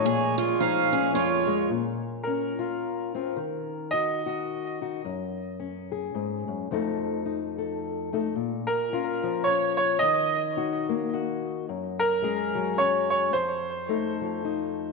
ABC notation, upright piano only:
X:1
M:3/4
L:1/8
Q:"Swing" 1/4=108
K:Bbm
V:1 name="Upright piano"
d4 z2 | z2 B4- | B2 e3 z | z6 |
z6 | z B3 d d | e3 z3 | z B3 d d |
c3 z3 |]